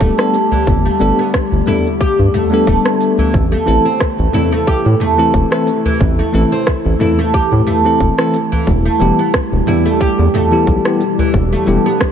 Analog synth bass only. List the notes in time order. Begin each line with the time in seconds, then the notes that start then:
0.01 D1
0.67 G1
1.01 G1
1.52 G1
2.19 G2
2.67 D1
3.34 A1
3.68 A1
4.19 A1
4.86 A2
5.34 E1
6.01 A1
6.34 A1
6.85 A1
7.52 A2
8.00 E1
8.67 E1
9.01 E1
9.52 E1
10.19 E2
10.67 B1
11.34 E1
11.67 E1